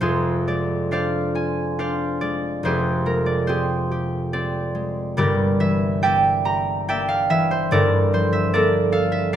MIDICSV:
0, 0, Header, 1, 2, 480
1, 0, Start_track
1, 0, Tempo, 882353
1, 7, Time_signature, 3, 2, 24, 8
1, 966, Tempo, 849858
1, 3366, Tempo, 835655
1, 4326, Tempo, 802139
1, 5322, End_track
2, 0, Start_track
2, 0, Title_t, "Harp"
2, 0, Program_c, 0, 46
2, 3, Note_on_c, 0, 29, 60
2, 5, Note_on_c, 0, 72, 89
2, 7, Note_on_c, 0, 41, 67
2, 11, Note_on_c, 0, 65, 70
2, 13, Note_on_c, 0, 68, 70
2, 258, Note_on_c, 0, 56, 45
2, 260, Note_on_c, 0, 74, 81
2, 496, Note_on_c, 0, 62, 57
2, 497, Note_off_c, 0, 74, 0
2, 499, Note_on_c, 0, 77, 92
2, 500, Note_off_c, 0, 72, 0
2, 504, Note_on_c, 0, 74, 73
2, 506, Note_on_c, 0, 72, 67
2, 726, Note_off_c, 0, 65, 0
2, 733, Note_on_c, 0, 65, 50
2, 736, Note_on_c, 0, 80, 84
2, 966, Note_off_c, 0, 77, 0
2, 967, Note_off_c, 0, 62, 0
2, 972, Note_off_c, 0, 72, 0
2, 972, Note_on_c, 0, 62, 53
2, 973, Note_off_c, 0, 74, 0
2, 974, Note_on_c, 0, 77, 81
2, 977, Note_on_c, 0, 72, 67
2, 982, Note_on_c, 0, 74, 66
2, 1205, Note_off_c, 0, 74, 0
2, 1211, Note_off_c, 0, 56, 0
2, 1211, Note_on_c, 0, 74, 93
2, 1218, Note_on_c, 0, 56, 47
2, 1442, Note_off_c, 0, 29, 0
2, 1449, Note_on_c, 0, 29, 59
2, 1451, Note_off_c, 0, 72, 0
2, 1453, Note_off_c, 0, 41, 0
2, 1457, Note_off_c, 0, 68, 0
2, 1457, Note_on_c, 0, 41, 68
2, 1460, Note_on_c, 0, 72, 97
2, 1464, Note_on_c, 0, 68, 68
2, 1467, Note_on_c, 0, 67, 67
2, 1468, Note_off_c, 0, 74, 0
2, 1469, Note_off_c, 0, 65, 0
2, 1470, Note_off_c, 0, 62, 0
2, 1470, Note_off_c, 0, 77, 0
2, 1685, Note_off_c, 0, 56, 0
2, 1690, Note_on_c, 0, 56, 50
2, 1692, Note_on_c, 0, 70, 81
2, 1805, Note_on_c, 0, 74, 78
2, 1891, Note_off_c, 0, 70, 0
2, 1916, Note_off_c, 0, 72, 0
2, 1923, Note_on_c, 0, 72, 89
2, 1926, Note_off_c, 0, 68, 0
2, 1928, Note_on_c, 0, 60, 56
2, 1929, Note_off_c, 0, 67, 0
2, 1934, Note_on_c, 0, 67, 69
2, 1935, Note_on_c, 0, 68, 69
2, 2007, Note_off_c, 0, 74, 0
2, 2167, Note_off_c, 0, 67, 0
2, 2174, Note_on_c, 0, 67, 53
2, 2406, Note_off_c, 0, 60, 0
2, 2409, Note_on_c, 0, 74, 94
2, 2413, Note_on_c, 0, 60, 52
2, 2638, Note_off_c, 0, 56, 0
2, 2645, Note_on_c, 0, 56, 52
2, 2879, Note_off_c, 0, 74, 0
2, 2882, Note_on_c, 0, 31, 69
2, 2886, Note_on_c, 0, 43, 71
2, 2887, Note_off_c, 0, 67, 0
2, 2887, Note_on_c, 0, 74, 101
2, 2893, Note_on_c, 0, 67, 73
2, 2893, Note_on_c, 0, 70, 72
2, 2905, Note_off_c, 0, 56, 0
2, 2905, Note_off_c, 0, 72, 0
2, 2906, Note_off_c, 0, 29, 0
2, 2909, Note_off_c, 0, 80, 0
2, 2910, Note_off_c, 0, 68, 0
2, 2911, Note_off_c, 0, 41, 0
2, 2911, Note_off_c, 0, 60, 0
2, 3126, Note_on_c, 0, 52, 53
2, 3127, Note_on_c, 0, 76, 90
2, 3362, Note_off_c, 0, 74, 0
2, 3365, Note_off_c, 0, 76, 0
2, 3365, Note_on_c, 0, 58, 59
2, 3367, Note_on_c, 0, 79, 103
2, 3369, Note_on_c, 0, 74, 81
2, 3372, Note_on_c, 0, 76, 76
2, 3602, Note_off_c, 0, 67, 0
2, 3609, Note_on_c, 0, 67, 57
2, 3612, Note_on_c, 0, 82, 97
2, 3852, Note_off_c, 0, 79, 0
2, 3854, Note_off_c, 0, 58, 0
2, 3856, Note_off_c, 0, 74, 0
2, 3858, Note_off_c, 0, 76, 0
2, 3859, Note_on_c, 0, 58, 61
2, 3860, Note_on_c, 0, 79, 107
2, 3862, Note_on_c, 0, 74, 78
2, 3866, Note_on_c, 0, 76, 80
2, 3975, Note_on_c, 0, 77, 106
2, 4090, Note_off_c, 0, 76, 0
2, 4091, Note_off_c, 0, 52, 0
2, 4097, Note_on_c, 0, 52, 59
2, 4099, Note_on_c, 0, 76, 109
2, 4175, Note_off_c, 0, 77, 0
2, 4219, Note_on_c, 0, 72, 88
2, 4329, Note_off_c, 0, 31, 0
2, 4330, Note_off_c, 0, 74, 0
2, 4332, Note_off_c, 0, 43, 0
2, 4334, Note_on_c, 0, 31, 71
2, 4338, Note_off_c, 0, 70, 0
2, 4339, Note_on_c, 0, 43, 77
2, 4340, Note_on_c, 0, 74, 109
2, 4342, Note_on_c, 0, 69, 81
2, 4346, Note_off_c, 0, 67, 0
2, 4347, Note_on_c, 0, 70, 86
2, 4351, Note_off_c, 0, 79, 0
2, 4352, Note_off_c, 0, 52, 0
2, 4352, Note_off_c, 0, 76, 0
2, 4419, Note_off_c, 0, 72, 0
2, 4587, Note_on_c, 0, 53, 54
2, 4590, Note_on_c, 0, 72, 91
2, 4702, Note_on_c, 0, 76, 101
2, 4787, Note_off_c, 0, 72, 0
2, 4820, Note_off_c, 0, 74, 0
2, 4821, Note_off_c, 0, 58, 0
2, 4827, Note_on_c, 0, 58, 58
2, 4828, Note_off_c, 0, 70, 0
2, 4829, Note_on_c, 0, 74, 106
2, 4832, Note_off_c, 0, 69, 0
2, 4835, Note_on_c, 0, 70, 78
2, 4839, Note_on_c, 0, 69, 82
2, 4901, Note_off_c, 0, 76, 0
2, 5053, Note_off_c, 0, 69, 0
2, 5059, Note_on_c, 0, 69, 63
2, 5061, Note_on_c, 0, 77, 102
2, 5177, Note_on_c, 0, 76, 98
2, 5256, Note_off_c, 0, 77, 0
2, 5298, Note_off_c, 0, 58, 0
2, 5298, Note_off_c, 0, 74, 0
2, 5304, Note_off_c, 0, 70, 0
2, 5304, Note_on_c, 0, 77, 111
2, 5322, Note_off_c, 0, 31, 0
2, 5322, Note_off_c, 0, 43, 0
2, 5322, Note_off_c, 0, 53, 0
2, 5322, Note_off_c, 0, 69, 0
2, 5322, Note_off_c, 0, 76, 0
2, 5322, Note_off_c, 0, 77, 0
2, 5322, Note_off_c, 0, 82, 0
2, 5322, End_track
0, 0, End_of_file